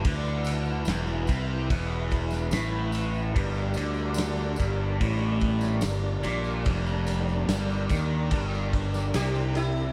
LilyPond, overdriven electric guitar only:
\new Staff \with { instrumentName = "Overdriven electric guitar" } { \clef bass \time 4/4 \key g \dorian \tempo 4 = 72 d4 e,8 c8 e,4 a,4 | g,8 d4 g,8 a,4 g,8 bes,8 | f,4 g,8 ees8 g,4 c4 | }